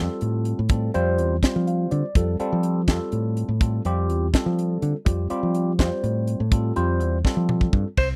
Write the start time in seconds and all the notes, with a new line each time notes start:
Already playing: G3 C4 F4 A4
0.21 A2, closed hi-hat
0.45 closed hi-hat
0.59 A2
0.69 G3 C4 F4 A4, kick, closed hi-hat
0.94 F2 G3 C4 F4 C5, closed hi-hat
1.18 E2, closed hi-hat
1.43 G3 C4 F4 C5, kick, snare, closed hi-hat
1.56 F3
1.67 F5, closed hi-hat
1.91 D3 D5, closed hi-hat
2.15 F2 G3 C4 F4 A4, kick, closed hi-hat
2.40 G3 C4 F4 A4, muted fingered electric bass stroke, closed hi-hat
2.52 F3
2.63 closed hi-hat
2.88 F2 G3 C4 F4 A4, kick, snare, closed hi-hat
3.12 A2, closed hi-hat
3.37 closed hi-hat
3.48 A2
3.61 G3 C4 F4 A4, kick, closed hi-hat
3.85 F2 G3 C4 F4 G4, closed hi-hat
4.10 E2, closed hi-hat
4.33 G3 C4 F4 A4, kick, snare, closed hi-hat
4.46 F3
4.59 closed hi-hat
4.82 D3, closed hi-hat
5.05 F2 G3 C4 F4 G4, kick, closed hi-hat
5.30 G3 C4 F4 G4, muted fingered electric bass stroke, closed hi-hat
5.43 F3
5.54 closed hi-hat
5.78 F2 G3 C4 F4 C5, kick, snare, closed hi-hat
6.03 A2, closed hi-hat
6.27 closed hi-hat
6.40 A2
6.52 G3 C4 F4 A4, kick, closed hi-hat
6.76 F2 G3 C4 F4 C5, closed hi-hat
7.01 E2, closed hi-hat
7.24 G3 C4 F4 A4, kick, snare
7.37 F3
7.49 mid tom
7.61 kick
7.73 G2, kick
7.97 C2 C5, kick, crash